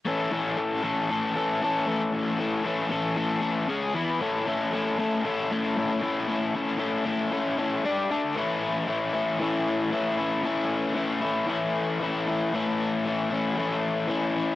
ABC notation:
X:1
M:4/4
L:1/8
Q:1/4=115
K:A
V:1 name="Overdriven electric guitar"
[A,,E,A,CA] [A,,E,A,CA] [A,,E,A,CA] [A,,E,A,CA] [A,,E,A,CA] [A,,E,A,CA] [A,,E,A,CA] [A,,E,A,CA] | [A,,E,A,CA] [A,,E,A,CA] [A,,E,A,CA] [A,,E,A,CA] [A,,E,A,CA] [A,,E,A,CA] [C,G,CG] [E,B,EB] | [A,,A,CEA] [A,,A,CEA] [A,,A,CEA] [A,,A,CEA] [A,,A,CEA] [A,,A,CEA] [A,,A,CEA] [A,,A,CEA] | [A,,A,CEA] [A,,A,CEA] [A,,A,CEA] [A,,A,CEA] [A,,A,CEA] [A,,A,CEA] [=G,D=Gd] [D,A,DA] |
[A,,E,A,CE]2 [E,A,CE] [A,CE] [A,,E,A,CE]2 [E,A,CE] [A,CE] | [A,,E,A,CE]2 [E,A,CE] [A,CE] [A,,E,A,CE]2 [E,A,CE] [A,CE] | [A,,E,A,CE]2 [E,A,CE] [A,CE] [A,,E,A,CE]2 [E,A,CE] [A,CE] |]